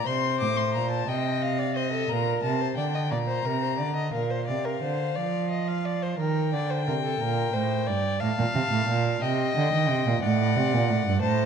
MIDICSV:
0, 0, Header, 1, 4, 480
1, 0, Start_track
1, 0, Tempo, 681044
1, 47, Time_signature, 12, 3, 24, 8
1, 4368, Tempo, 670391
1, 8132, End_track
2, 0, Start_track
2, 0, Title_t, "Violin"
2, 0, Program_c, 0, 40
2, 41, Note_on_c, 0, 84, 94
2, 280, Note_off_c, 0, 84, 0
2, 284, Note_on_c, 0, 86, 89
2, 400, Note_on_c, 0, 84, 79
2, 411, Note_off_c, 0, 86, 0
2, 522, Note_off_c, 0, 84, 0
2, 526, Note_on_c, 0, 82, 82
2, 635, Note_off_c, 0, 82, 0
2, 639, Note_on_c, 0, 81, 79
2, 760, Note_on_c, 0, 79, 85
2, 771, Note_off_c, 0, 81, 0
2, 1002, Note_on_c, 0, 77, 89
2, 1012, Note_off_c, 0, 79, 0
2, 1236, Note_off_c, 0, 77, 0
2, 1240, Note_on_c, 0, 75, 84
2, 1475, Note_on_c, 0, 82, 93
2, 1486, Note_off_c, 0, 75, 0
2, 1708, Note_off_c, 0, 82, 0
2, 1712, Note_on_c, 0, 81, 82
2, 1946, Note_off_c, 0, 81, 0
2, 1951, Note_on_c, 0, 79, 74
2, 2185, Note_on_c, 0, 82, 84
2, 2195, Note_off_c, 0, 79, 0
2, 2911, Note_off_c, 0, 82, 0
2, 2915, Note_on_c, 0, 77, 68
2, 4369, Note_on_c, 0, 79, 80
2, 4380, Note_off_c, 0, 77, 0
2, 5805, Note_off_c, 0, 79, 0
2, 5809, Note_on_c, 0, 81, 86
2, 6520, Note_off_c, 0, 81, 0
2, 6534, Note_on_c, 0, 79, 82
2, 7239, Note_off_c, 0, 79, 0
2, 7253, Note_on_c, 0, 78, 89
2, 7954, Note_off_c, 0, 78, 0
2, 7963, Note_on_c, 0, 81, 82
2, 8132, Note_off_c, 0, 81, 0
2, 8132, End_track
3, 0, Start_track
3, 0, Title_t, "Violin"
3, 0, Program_c, 1, 40
3, 50, Note_on_c, 1, 72, 81
3, 753, Note_off_c, 1, 72, 0
3, 767, Note_on_c, 1, 75, 72
3, 1119, Note_on_c, 1, 74, 68
3, 1130, Note_off_c, 1, 75, 0
3, 1239, Note_on_c, 1, 72, 72
3, 1249, Note_off_c, 1, 74, 0
3, 1355, Note_off_c, 1, 72, 0
3, 1359, Note_on_c, 1, 69, 70
3, 1484, Note_on_c, 1, 70, 69
3, 1495, Note_off_c, 1, 69, 0
3, 1839, Note_on_c, 1, 72, 63
3, 1849, Note_off_c, 1, 70, 0
3, 1952, Note_off_c, 1, 72, 0
3, 1956, Note_on_c, 1, 74, 64
3, 2005, Note_off_c, 1, 74, 0
3, 2075, Note_on_c, 1, 75, 65
3, 2124, Note_off_c, 1, 75, 0
3, 2194, Note_on_c, 1, 74, 68
3, 2243, Note_off_c, 1, 74, 0
3, 2310, Note_on_c, 1, 72, 70
3, 2433, Note_on_c, 1, 70, 69
3, 2443, Note_off_c, 1, 72, 0
3, 2544, Note_off_c, 1, 70, 0
3, 2548, Note_on_c, 1, 72, 62
3, 2662, Note_off_c, 1, 72, 0
3, 2666, Note_on_c, 1, 74, 65
3, 2786, Note_off_c, 1, 74, 0
3, 2790, Note_on_c, 1, 75, 65
3, 2912, Note_off_c, 1, 75, 0
3, 2916, Note_on_c, 1, 70, 67
3, 3034, Note_on_c, 1, 72, 66
3, 3044, Note_off_c, 1, 70, 0
3, 3149, Note_off_c, 1, 72, 0
3, 3153, Note_on_c, 1, 74, 68
3, 3277, Note_on_c, 1, 70, 61
3, 3287, Note_off_c, 1, 74, 0
3, 3391, Note_off_c, 1, 70, 0
3, 3395, Note_on_c, 1, 72, 65
3, 3633, Note_on_c, 1, 74, 76
3, 3644, Note_off_c, 1, 72, 0
3, 3877, Note_off_c, 1, 74, 0
3, 3881, Note_on_c, 1, 75, 62
3, 4002, Note_on_c, 1, 77, 68
3, 4012, Note_off_c, 1, 75, 0
3, 4126, Note_on_c, 1, 74, 72
3, 4136, Note_off_c, 1, 77, 0
3, 4247, Note_on_c, 1, 72, 75
3, 4258, Note_off_c, 1, 74, 0
3, 4360, Note_off_c, 1, 72, 0
3, 4364, Note_on_c, 1, 70, 81
3, 4602, Note_off_c, 1, 70, 0
3, 4610, Note_on_c, 1, 74, 75
3, 4730, Note_on_c, 1, 72, 71
3, 4740, Note_off_c, 1, 74, 0
3, 4847, Note_off_c, 1, 72, 0
3, 4852, Note_on_c, 1, 70, 74
3, 4899, Note_off_c, 1, 70, 0
3, 4971, Note_on_c, 1, 69, 74
3, 5089, Note_on_c, 1, 70, 84
3, 5099, Note_off_c, 1, 69, 0
3, 5324, Note_on_c, 1, 72, 83
3, 5334, Note_off_c, 1, 70, 0
3, 5563, Note_on_c, 1, 74, 88
3, 5573, Note_off_c, 1, 72, 0
3, 5804, Note_on_c, 1, 77, 85
3, 5815, Note_off_c, 1, 74, 0
3, 6529, Note_on_c, 1, 75, 85
3, 6539, Note_off_c, 1, 77, 0
3, 7246, Note_off_c, 1, 75, 0
3, 7251, Note_on_c, 1, 74, 85
3, 7952, Note_off_c, 1, 74, 0
3, 7959, Note_on_c, 1, 72, 85
3, 8132, Note_off_c, 1, 72, 0
3, 8132, End_track
4, 0, Start_track
4, 0, Title_t, "Cello"
4, 0, Program_c, 2, 42
4, 48, Note_on_c, 2, 48, 69
4, 291, Note_on_c, 2, 45, 63
4, 302, Note_off_c, 2, 48, 0
4, 529, Note_on_c, 2, 46, 64
4, 540, Note_off_c, 2, 45, 0
4, 764, Note_off_c, 2, 46, 0
4, 768, Note_on_c, 2, 48, 76
4, 1471, Note_off_c, 2, 48, 0
4, 1484, Note_on_c, 2, 46, 70
4, 1716, Note_off_c, 2, 46, 0
4, 1721, Note_on_c, 2, 48, 69
4, 1956, Note_off_c, 2, 48, 0
4, 1960, Note_on_c, 2, 50, 66
4, 2197, Note_on_c, 2, 46, 67
4, 2208, Note_off_c, 2, 50, 0
4, 2435, Note_off_c, 2, 46, 0
4, 2439, Note_on_c, 2, 48, 66
4, 2680, Note_on_c, 2, 50, 64
4, 2690, Note_off_c, 2, 48, 0
4, 2914, Note_off_c, 2, 50, 0
4, 2918, Note_on_c, 2, 46, 64
4, 3162, Note_on_c, 2, 48, 56
4, 3172, Note_off_c, 2, 46, 0
4, 3399, Note_off_c, 2, 48, 0
4, 3403, Note_on_c, 2, 50, 59
4, 3641, Note_off_c, 2, 50, 0
4, 3648, Note_on_c, 2, 53, 68
4, 4353, Note_off_c, 2, 53, 0
4, 4367, Note_on_c, 2, 51, 64
4, 4610, Note_on_c, 2, 50, 67
4, 4621, Note_off_c, 2, 51, 0
4, 4854, Note_on_c, 2, 48, 61
4, 4865, Note_off_c, 2, 50, 0
4, 5089, Note_off_c, 2, 48, 0
4, 5093, Note_on_c, 2, 46, 69
4, 5327, Note_off_c, 2, 46, 0
4, 5332, Note_on_c, 2, 45, 69
4, 5577, Note_on_c, 2, 43, 66
4, 5588, Note_off_c, 2, 45, 0
4, 5810, Note_off_c, 2, 43, 0
4, 5815, Note_on_c, 2, 45, 87
4, 5862, Note_off_c, 2, 45, 0
4, 5936, Note_on_c, 2, 46, 83
4, 5983, Note_off_c, 2, 46, 0
4, 6050, Note_on_c, 2, 48, 76
4, 6099, Note_off_c, 2, 48, 0
4, 6170, Note_on_c, 2, 45, 82
4, 6285, Note_off_c, 2, 45, 0
4, 6290, Note_on_c, 2, 46, 80
4, 6528, Note_off_c, 2, 46, 0
4, 6537, Note_on_c, 2, 48, 83
4, 6772, Note_off_c, 2, 48, 0
4, 6781, Note_on_c, 2, 50, 84
4, 6895, Note_off_c, 2, 50, 0
4, 6899, Note_on_c, 2, 51, 80
4, 7016, Note_on_c, 2, 48, 91
4, 7027, Note_off_c, 2, 51, 0
4, 7135, Note_off_c, 2, 48, 0
4, 7138, Note_on_c, 2, 46, 93
4, 7185, Note_off_c, 2, 46, 0
4, 7254, Note_on_c, 2, 45, 97
4, 7492, Note_on_c, 2, 48, 89
4, 7502, Note_off_c, 2, 45, 0
4, 7617, Note_on_c, 2, 46, 92
4, 7627, Note_off_c, 2, 48, 0
4, 7733, Note_on_c, 2, 45, 88
4, 7744, Note_off_c, 2, 46, 0
4, 7851, Note_off_c, 2, 45, 0
4, 7855, Note_on_c, 2, 43, 86
4, 7966, Note_off_c, 2, 43, 0
4, 7970, Note_on_c, 2, 45, 92
4, 8132, Note_off_c, 2, 45, 0
4, 8132, End_track
0, 0, End_of_file